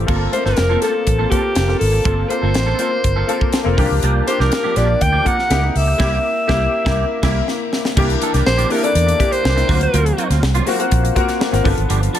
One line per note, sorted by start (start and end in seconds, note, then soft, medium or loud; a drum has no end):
0.00 0.11 A3 medium
0.00 0.07 C4 medium
0.00 0.11 E4 medium
0.00 0.11 G4 medium
0.00 0.11 F5 medium
0.00 0.10 G5 medium
0.06 0.26 G1 loud
0.06 0.26 A#3 medium
0.06 0.31 A#3 medium
0.06 0.26 C4 medium
0.06 0.31 C4 medium
0.06 0.26 F4 medium
0.06 0.32 F4 medium
0.06 0.26 A4 medium
0.06 0.32 A4 medium
0.06 kick loud
0.06 crash medium
0.32 0.38 A3 medium
0.32 0.69 C4 medium
0.32 0.69 F4 medium
0.32 0.69 A4 medium
0.32 0.45 C5 medium
0.32 muted clean electric guitar stroke soft
0.32 closed hi-hat medium
0.37 0.71 A#3 medium
0.45 0.54 G1 loud
0.45 0.56 A#3 soft
0.45 0.56 C4 soft
0.45 0.57 F4 medium
0.45 0.57 A4 soft
0.45 0.83 A#4 medium
0.45 snare soft
0.56 0.75 F1 medium
0.56 muted clean electric guitar stroke soft
0.56 snare loud
0.56 closed hi-hat medium
0.69 0.81 A#3 medium
0.69 0.81 C4 medium
0.69 0.82 F4 medium
0.69 0.82 A4 medium
0.80 1.18 A#3 medium
0.80 0.99 A#3 medium
0.80 1.18 C4 medium
0.80 0.94 C4 medium
0.80 1.18 F4 medium
0.80 0.94 F4 medium
0.80 1.32 A4 medium
0.80 1.18 A4 medium
0.80 0.93 A4 medium
0.80 snare soft
0.80 closed hi-hat medium
0.94 muted clean electric guitar stroke soft
1.07 1.24 A1 medium
1.07 muted clean electric guitar stroke soft
1.07 kick medium
1.07 closed hi-hat medium
1.18 1.30 A#3 medium
1.18 1.30 C4 medium
1.18 1.31 F4 medium
1.18 1.32 A4 medium
1.30 1.58 A#3 medium
1.30 1.48 A#3 medium
1.30 1.58 C4 medium
1.30 1.43 C4 medium
1.30 1.59 F4 medium
1.30 1.43 F4 medium
1.30 1.78 G4 medium
1.30 1.59 A4 medium
1.30 1.42 A4 medium
1.30 kick medium
1.30 closed hi-hat medium
1.43 muted clean electric guitar stroke soft
1.55 1.73 F1 medium
1.55 muted clean electric guitar stroke soft
1.55 snare loud
1.55 closed hi-hat medium
1.68 1.95 A#3 medium
1.68 1.95 C4 medium
1.68 1.96 F4 medium
1.68 1.96 A4 medium
1.68 muted clean electric guitar stroke soft
1.68 snare soft
1.79 1.98 G#1 medium
1.79 2.30 A4 medium
1.79 open hi-hat medium
1.92 muted clean electric guitar stroke soft
2.04 2.23 G1 medium
2.04 2.28 A#3 medium
2.04 2.23 A#3 medium
2.04 2.23 C4 medium
2.04 2.28 C4 medium
2.04 2.24 F4 medium
2.04 2.28 F4 medium
2.04 2.24 A4 medium
2.04 2.29 A4 medium
2.04 kick loud
2.04 closed hi-hat medium
2.29 2.66 A#3 medium
2.29 2.66 C4 medium
2.29 2.66 F4 medium
2.29 2.67 A4 medium
2.29 3.78 C5 medium
2.29 muted clean electric guitar stroke medium
2.29 closed hi-hat medium
2.42 2.51 G1 medium
2.42 2.53 A#3 medium
2.42 2.53 C4 medium
2.42 2.54 F4 medium
2.42 2.54 A4 medium
2.54 2.72 A1 medium
2.54 muted clean electric guitar stroke soft
2.54 snare loud
2.54 closed hi-hat medium
2.66 2.77 A#3 medium
2.66 2.78 C4 medium
2.66 2.79 F4 medium
2.66 2.79 A4 medium
2.78 3.15 A#3 medium
2.78 2.96 A#3 medium
2.78 3.15 C4 medium
2.78 2.92 C4 medium
2.78 3.15 F4 medium
2.78 2.91 F4 medium
2.78 2.90 A4 medium
2.78 3.16 C5 medium
2.78 closed hi-hat medium
2.92 muted clean electric guitar stroke soft
3.04 3.22 G1 medium
3.04 muted clean electric guitar stroke soft
3.04 kick medium
3.04 closed hi-hat medium
3.16 3.27 A#3 medium
3.16 3.28 C4 medium
3.16 3.29 F4 medium
3.16 3.29 A4 medium
3.27 3.55 A#3 medium
3.27 3.46 A#3 medium
3.27 3.56 C4 medium
3.27 3.41 C4 medium
3.27 3.56 F4 medium
3.27 3.41 F4 medium
3.27 3.56 A4 loud
3.27 3.40 A4 medium
3.27 closed hi-hat medium
3.41 muted clean electric guitar stroke soft
3.41 kick medium
3.53 snare loud
3.53 closed hi-hat medium
3.64 3.74 F1 medium
3.64 3.76 A#3 medium
3.64 3.78 C4 medium
3.64 3.76 F4 medium
3.64 3.78 A4 medium
3.64 muted clean electric guitar stroke soft
3.77 3.87 C2 loud
3.77 3.97 F3 medium
3.77 4.17 A#3 medium
3.77 3.90 A#3 medium
3.77 4.17 D4 medium
3.77 3.90 D4 loud
3.77 4.17 F4 medium
3.77 4.18 G4 medium
3.77 3.89 G4 loud
3.77 kick medium
3.77 open hi-hat medium
3.90 3.99 C#2 medium
3.90 muted clean electric guitar stroke soft
4.02 4.20 C2 loud
4.02 4.25 F3 medium
4.02 4.26 A#3 loud
4.02 4.26 D4 medium
4.02 4.26 G4 medium
4.02 closed hi-hat medium
4.27 4.63 A#3 medium
4.27 4.63 D4 medium
4.27 4.64 F4 medium
4.27 4.64 G4 medium
4.27 4.42 C5 medium
4.27 muted clean electric guitar stroke soft
4.27 closed hi-hat medium
4.39 4.48 C2 medium
4.39 4.51 F3 medium
4.39 4.51 A#3 medium
4.39 4.51 D4 medium
4.39 4.52 G4 medium
4.39 4.78 A#4 loud
4.39 snare soft
4.52 muted clean electric guitar stroke soft
4.52 snare loud
4.52 closed hi-hat medium
4.63 4.74 F3 medium
4.63 4.75 A#3 medium
4.63 4.75 D4 medium
4.63 4.76 G4 medium
4.75 4.94 A#1 medium
4.75 4.93 F3 medium
4.75 4.88 A#3 medium
4.75 5.12 A#3 medium
4.75 5.13 D4 medium
4.75 4.88 D4 medium
4.75 5.13 F4 medium
4.75 4.87 G4 medium
4.75 5.13 G4 medium
4.75 5.03 D5 loud
4.75 snare soft
4.75 closed hi-hat medium
4.88 muted clean electric guitar stroke soft
5.01 5.19 D2 medium
5.01 5.28 G5 loud
5.01 muted clean electric guitar stroke soft
5.01 kick medium
5.01 closed hi-hat medium
5.12 5.24 F3 medium
5.12 5.24 A#3 medium
5.12 5.25 D4 medium
5.12 5.26 G4 medium
5.24 5.43 F3 medium
5.24 5.48 A#3 medium
5.24 5.38 A#3 medium
5.24 5.50 D4 medium
5.24 5.37 D4 medium
5.24 5.50 F4 medium
5.24 5.36 G4 medium
5.24 5.51 A#4 medium
5.24 5.69 F#5 loud
5.24 kick medium
5.24 closed hi-hat medium
5.37 muted clean electric guitar stroke soft
5.37 snare soft
5.50 5.68 C#2 medium
5.50 5.60 A#3 medium
5.50 5.60 D#4 medium
5.50 5.60 E4 medium
5.50 5.60 G4 medium
5.50 muted clean electric guitar stroke soft
5.50 snare loud
5.50 closed hi-hat medium
5.62 5.89 A#3 medium
5.62 5.90 D#4 medium
5.62 5.90 E4 medium
5.62 5.90 G4 medium
5.62 muted clean electric guitar stroke soft
5.69 5.78 F#5 medium
5.75 5.92 C#2 medium
5.75 7.48 E5 loud
5.75 open hi-hat medium
5.87 muted clean electric guitar stroke soft
5.98 6.17 C2 loud
5.98 6.16 G3 medium
5.98 6.15 A#3 loud
5.98 6.16 A#3 loud
5.98 6.16 E4 medium
5.98 6.17 E4 loud
5.98 6.17 G4 medium
5.98 kick loud
5.98 snare loud
5.98 crash medium
6.47 6.66 C2 medium
6.47 6.66 G3 loud
6.47 6.65 A#3 medium
6.47 6.66 A#3 loud
6.47 6.65 E4 medium
6.47 6.66 E4 loud
6.47 6.65 G4 loud
6.47 6.66 G4 medium
6.47 kick medium
6.47 snare medium
6.85 7.03 C2 loud
6.85 7.02 G3 loud
6.85 7.02 A#3 medium
6.85 7.03 A#3 medium
6.85 7.02 E4 loud
6.85 7.03 E4 loud
6.85 7.03 G4 medium
6.85 kick loud
6.85 snare loud
7.22 7.40 C2 loud
7.22 7.39 G3 loud
7.22 7.40 A#3 medium
7.22 7.40 A#3 loud
7.22 7.40 E4 loud
7.22 7.40 G4 loud
7.22 kick loud
7.22 snare loud
7.22 crash medium
7.48 snare medium
7.73 snare medium
7.85 snare medium
7.96 8.14 C2 loud
7.96 8.16 E3 medium
7.96 8.50 A#3 medium
7.96 8.09 A#3 loud
7.96 8.51 D4 medium
7.96 8.08 D4 medium
7.96 8.51 E4 medium
7.96 8.51 G4 loud
7.96 8.08 G4 medium
7.96 kick loud
7.96 crash medium
8.09 muted clean electric guitar stroke medium
8.09 closed hi-hat soft
8.21 8.34 E3 medium
8.21 8.34 A#3 medium
8.21 8.33 D4 medium
8.21 8.33 A4 medium
8.21 closed hi-hat medium
8.33 8.42 C2 medium
8.33 8.45 E3 medium
8.33 8.45 A#3 medium
8.33 8.46 D4 medium
8.33 8.46 G4 medium
8.33 snare soft
8.33 closed hi-hat medium
8.46 8.63 A#1 medium
8.46 8.73 C5 loud
8.46 muted clean electric guitar stroke soft
8.46 snare loud
8.58 8.69 E3 medium
8.58 8.69 A#3 medium
8.58 8.70 D4 medium
8.58 8.71 G4 medium
8.58 closed hi-hat medium
8.70 8.87 E3 medium
8.70 8.79 A#3 medium
8.70 8.82 A#3 medium
8.70 8.79 D4 medium
8.70 8.82 D4 medium
8.70 8.80 E4 medium
8.70 8.80 G4 medium
8.70 8.82 A4 medium
8.70 8.85 A#4 medium
8.70 open hi-hat medium
8.82 9.10 A#3 medium
8.82 9.10 D4 medium
8.82 9.10 E4 medium
8.82 9.10 A4 medium
8.82 9.34 D5 loud
8.82 muted clean electric guitar stroke soft
8.82 closed hi-hat soft
8.95 9.12 E2 loud
8.95 muted clean electric guitar stroke soft
8.95 closed hi-hat medium
9.06 muted clean electric guitar stroke medium
9.06 closed hi-hat medium
9.19 9.46 A#3 medium
9.19 9.46 D4 medium
9.19 9.46 E4 medium
9.19 9.47 G4 medium
9.19 kick medium
9.19 closed hi-hat medium
9.31 9.81 C5 loud
9.31 muted clean electric guitar stroke soft
9.31 closed hi-hat soft
9.44 9.62 C2 medium
9.44 muted clean electric guitar stroke medium
9.44 snare loud
9.55 9.66 A#3 medium
9.55 9.68 D4 medium
9.55 9.69 E4 medium
9.55 9.69 G4 medium
9.55 muted clean electric guitar stroke soft
9.55 snare soft
9.55 closed hi-hat soft
9.68 9.86 D2 medium
9.68 9.88 F#3 medium
9.68 10.47 A#3 medium
9.68 9.81 A#3 medium
9.68 10.47 C4 medium
9.68 9.80 C4 medium
9.68 10.47 F4 medium
9.68 9.80 F4 medium
9.68 10.48 F#4 medium
9.68 kick loud
9.68 open hi-hat medium
9.81 10.28 A#4 medium
9.81 muted clean electric guitar stroke soft
9.81 closed hi-hat medium
9.93 10.11 D2 loud
9.93 10.13 F#3 medium
9.93 10.06 A#3 medium
9.93 10.05 C4 medium
9.93 10.04 F4 loud
9.93 closed hi-hat medium
10.06 muted clean electric guitar stroke soft
10.06 closed hi-hat soft
10.17 10.30 F#3 medium
10.17 10.30 A#3 medium
10.17 10.29 C4 medium
10.17 10.29 F#4 medium
10.17 closed hi-hat medium
10.30 10.39 D2 medium
10.30 10.41 F#3 soft
10.30 10.42 A#3 soft
10.30 10.42 C4 medium
10.30 10.43 F4 medium
10.30 snare soft
10.30 closed hi-hat medium
10.42 10.59 C2 medium
10.42 muted clean electric guitar stroke soft
10.42 snare loud
10.55 10.65 F#3 medium
10.55 10.66 A#3 medium
10.55 10.67 C4 medium
10.55 10.68 F4 medium
10.55 closed hi-hat medium
10.66 10.84 F#3 medium
10.66 10.75 A#3 medium
10.66 10.79 A#3 medium
10.66 10.76 C4 medium
10.66 10.79 C4 medium
10.66 10.76 F4 medium
10.66 10.76 F#4 medium
10.66 10.79 F#4 medium
10.66 snare soft
10.66 open hi-hat medium
10.79 11.06 A#3 medium
10.79 11.06 C4 medium
10.79 11.06 F4 medium
10.79 11.06 F#4 loud
10.79 muted clean electric guitar stroke medium
10.79 closed hi-hat medium
10.91 11.09 A#1 medium
10.91 muted clean electric guitar stroke soft
10.91 kick medium
10.91 closed hi-hat medium
11.04 muted clean electric guitar stroke soft
11.04 closed hi-hat medium
11.15 11.43 A#3 medium
11.15 11.43 C4 medium
11.15 11.43 F4 medium
11.15 11.43 F#4 loud
11.15 kick medium
11.15 closed hi-hat medium
11.28 muted clean electric guitar stroke soft
11.28 snare soft
11.28 closed hi-hat soft
11.40 muted clean electric guitar stroke soft
11.40 snare loud
11.51 11.61 G#1 medium
11.51 11.64 A#3 medium
11.51 11.65 C4 medium
11.51 11.63 F4 medium
11.51 11.65 F#4 medium
11.51 muted clean electric guitar stroke soft
11.51 snare soft
11.51 closed hi-hat soft
11.64 11.74 G1 medium
11.64 11.84 F3 medium
11.64 12.19 B3 medium
11.64 11.76 B3 medium
11.64 12.19 D4 medium
11.64 11.76 D4 medium
11.64 12.19 F4 medium
11.64 11.75 G4 medium
11.64 12.19 A4 medium
11.64 kick loud
11.64 open hi-hat medium
11.76 11.86 G#1 loud
11.76 muted clean electric guitar stroke soft
11.76 closed hi-hat soft
11.89 12.07 G1 loud
11.89 12.09 F3 loud
11.89 12.02 B3 medium
11.89 12.01 D4 loud
11.89 12.00 G4 medium
11.89 closed hi-hat medium
12.01 muted clean electric guitar stroke soft
12.01 closed hi-hat soft
12.13 12.19 F3 medium
12.13 12.19 B3 medium
12.13 12.19 D4 medium
12.13 12.19 A4 medium
12.13 closed hi-hat medium